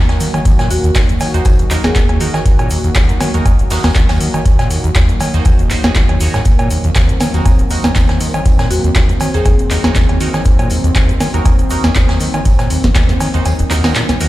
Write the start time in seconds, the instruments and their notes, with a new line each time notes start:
Already playing: analog synth pad D#3 F#3 A#3 F#4
0.09 acid bass D#2, snare, closed hi-hat, cowbell
0.20 acid bass D#3, open hi-hat, tambourine, shaker
0.34 acid bass D#3, closed hi-hat, cowbell, shaker
0.45 acid bass D#2, kick, closed hi-hat, tambourine, shaker
0.59 acid bass A#2, snare, closed hi-hat, cowbell, shaker
0.71 acid bass D#2, marimba F#4, open hi-hat, tambourine, shaker
0.84 acid bass D#2, closed hi-hat, shaker
0.95 acid bass D#2, kick, snare, clap, closed hi-hat, tambourine, cowbell, shaker
1.09 acid bass A#2, closed hi-hat, shaker
1.20 acid bass D#3, open hi-hat, tambourine, cowbell, shaker
1.34 acid bass D#2, synth stab D#4 F#4 C5, closed hi-hat, shaker
1.45 acid bass D#2, kick, closed hi-hat, tambourine, cowbell, shaker
1.59 acid bass D#1, closed hi-hat, shaker
1.71 acid bass D#2, synth stab D#4 F#4 A#4, clap, open hi-hat, tambourine, shaker
1.84 acid bass D#2, synth stab D#4 F#4 A#4, marimba G#4, snare, closed hi-hat, cowbell, shaker
1.95 acid bass D#2, kick, snare, clap, closed hi-hat, tambourine, shaker
2.09 acid bass D#2, closed hi-hat, cowbell
2.20 acid bass D#3, synth stab D#4 F#4 A#4, open hi-hat, tambourine, shaker
2.34 acid bass D#3, snare, closed hi-hat, cowbell, shaker
2.46 acid bass D#2, kick, closed hi-hat, tambourine, shaker
2.59 acid bass A#2, closed hi-hat, cowbell, shaker
2.70 acid bass D#2, open hi-hat, tambourine, shaker
2.84 acid bass D#2, closed hi-hat, shaker
2.94 acid bass D#2, kick, snare, clap, closed hi-hat, tambourine, cowbell, shaker
3.09 acid bass A#2, closed hi-hat, shaker
3.20 acid bass D#3, snare, open hi-hat, tambourine, cowbell, shaker
3.34 acid bass D#2, synth stab D#4 F#4 A#4, closed hi-hat, shaker
3.46 acid bass D#2, kick, closed hi-hat, tambourine, cowbell, shaker
3.59 acid bass D#1, closed hi-hat, shaker
3.70 acid bass D#2, synth stab D#4 F#4 A#4, snare, open hi-hat, tambourine, shaker
3.83 acid bass D#2, snare, tambourine, cowbell, shaker
3.95 acid bass D#2, kick, snare, clap, closed hi-hat, tambourine, shaker
4.09 acid bass D#2, snare, closed hi-hat, tambourine, cowbell
4.21 acid bass D#3, open hi-hat, tambourine, shaker
4.34 acid bass D#3, closed hi-hat, cowbell, shaker
4.46 acid bass D#2, kick, closed hi-hat, tambourine, shaker
4.59 acid bass A#2, snare, closed hi-hat, cowbell, shaker
4.70 acid bass D#2, open hi-hat, tambourine, shaker
4.84 acid bass D#2, closed hi-hat, shaker
4.95 acid bass D#2, kick, snare, clap, closed hi-hat, tambourine, cowbell, shaker
5.09 acid bass A#2, closed hi-hat, shaker
5.20 acid bass D#3, open hi-hat, tambourine, cowbell, shaker
5.34 acid bass D#2, synth stab D#4 F#4 C5, closed hi-hat, shaker
5.45 acid bass D#2, kick, closed hi-hat, tambourine, cowbell, shaker
5.59 acid bass D#1, closed hi-hat, shaker
5.70 acid bass D#2, synth stab D#4 F#4 C5, clap, open hi-hat, tambourine, shaker
5.84 acid bass D#2, synth stab D#4 F#4 G#4, snare, closed hi-hat, cowbell, shaker
5.95 acid bass D#2, kick, snare, clap, closed hi-hat, tambourine, shaker
6.09 acid bass D#2, closed hi-hat, cowbell
6.20 acid bass D#2, synth stab D#4 F#4 C#5, open hi-hat, tambourine, shaker
6.34 acid bass G#2, snare, cowbell, shaker
6.45 acid bass D#2, analog synth pad C4, kick, closed hi-hat, tambourine, shaker
6.59 acid bass A#2, closed hi-hat, cowbell, shaker
6.70 acid bass D#2, open hi-hat, tambourine, shaker
6.84 acid bass D#2, closed hi-hat, shaker
6.95 acid bass D#2, kick, snare, clap, closed hi-hat, tambourine, cowbell, shaker
7.09 acid bass A#2, closed hi-hat, shaker
7.20 acid bass D#3, snare, open hi-hat, tambourine, cowbell, shaker
7.34 acid bass D#2, synth stab D#4 F#4 A#4, closed hi-hat, shaker
7.46 acid bass D#2, kick, closed hi-hat, tambourine, cowbell, shaker
7.59 acid bass D#1, closed hi-hat, shaker
7.70 acid bass D#2, synth stab D#4 F#4 A#4, open hi-hat, tambourine, shaker
7.84 acid bass D#2, snare, cowbell, shaker
7.95 acid bass D#2, kick, snare, clap, closed hi-hat, tambourine, shaker
8.09 acid bass D#2, snare, closed hi-hat, cowbell
8.20 acid bass D#3, open hi-hat, tambourine, shaker
8.34 acid bass D#3, closed hi-hat, cowbell, shaker
8.46 acid bass D#2, kick, closed hi-hat, tambourine, shaker
8.58 acid bass A#2, snare, closed hi-hat, cowbell, shaker
8.70 acid bass D#2, marimba F#4, open hi-hat, tambourine, shaker
8.84 acid bass D#2, closed hi-hat, shaker
8.95 acid bass D#2, kick, snare, clap, closed hi-hat, tambourine, cowbell, shaker
9.09 acid bass A#2, closed hi-hat, shaker
9.20 acid bass D#3, open hi-hat, tambourine, cowbell, shaker
9.34 acid bass D#2, synth stab D#4 F#4 C5, marimba G#4, closed hi-hat, shaker
9.45 acid bass D#2, kick, closed hi-hat, tambourine, cowbell, shaker
9.59 acid bass D#1, closed hi-hat, shaker
9.70 acid bass D#2, synth stab D#4 F#4 A#4, clap, open hi-hat, tambourine, shaker
9.84 acid bass D#2, synth stab D#4 F#4 A#4, snare, cowbell, shaker
9.95 acid bass D#2, kick, snare, clap, closed hi-hat, tambourine, shaker
10.09 acid bass D#2, closed hi-hat, cowbell
10.20 acid bass D#3, synth stab D#4 F#4 A#4, open hi-hat, tambourine, shaker
10.34 acid bass D#3, snare, closed hi-hat, cowbell, shaker
10.45 acid bass D#2, kick, closed hi-hat, tambourine, shaker
10.59 acid bass A#2, closed hi-hat, cowbell, shaker
10.70 acid bass D#2, open hi-hat, tambourine, shaker
10.84 acid bass D#2, closed hi-hat, shaker
10.95 acid bass D#2, kick, snare, clap, closed hi-hat, tambourine, cowbell, shaker
11.09 acid bass A#2, closed hi-hat, shaker
11.20 acid bass D#3, snare, open hi-hat, tambourine, cowbell, shaker
11.34 acid bass D#2, synth stab D#4 F#4 A#4, closed hi-hat, shaker
11.45 acid bass D#2, kick, closed hi-hat, tambourine, cowbell, shaker
11.59 acid bass D#1, closed hi-hat, shaker
11.70 acid bass D#2, synth stab D#4 F#4 A#4, open hi-hat, tambourine, shaker
11.84 acid bass D#2, snare, cowbell, shaker
11.95 acid bass D#2, kick, snare, clap, closed hi-hat, tambourine, shaker
12.09 acid bass D#2, snare, closed hi-hat, cowbell
12.19 acid bass D#3, open hi-hat, tambourine, shaker
12.34 acid bass D#3, closed hi-hat, cowbell, shaker
12.45 acid bass D#2, kick, closed hi-hat, tambourine, shaker
12.59 acid bass A#2, snare, closed hi-hat, cowbell, shaker
12.70 acid bass D#2, open hi-hat, tambourine, shaker
12.84 acid bass D#2, kick, snare, closed hi-hat, shaker
12.95 acid bass D#2, kick, snare, clap, closed hi-hat, tambourine, cowbell, shaker
13.09 acid bass A#2, snare, closed hi-hat, shaker
13.20 acid bass D#3, open hi-hat, tambourine, cowbell, shaker
13.34 acid bass D#2, synth stab D#4 F#4 C5, closed hi-hat, shaker
13.45 acid bass D#2, closed hi-hat, tambourine, cowbell, shaker
13.59 acid bass D#1, closed hi-hat, shaker
13.70 acid bass D#2, synth stab D#4 F#4 A#4, snare, clap, open hi-hat, tambourine, shaker
13.84 acid bass D#3, synth stab D#4 F#4 A#4, snare, closed hi-hat, tambourine, cowbell, shaker
13.95 acid bass A#2, snare, clap, closed hi-hat, tambourine, shaker
14.09 acid bass C#2, snare, closed hi-hat, cowbell, shaker
14.20 acid bass D#2, synth stab D#4 F#4 A#4, open hi-hat, tambourine, shaker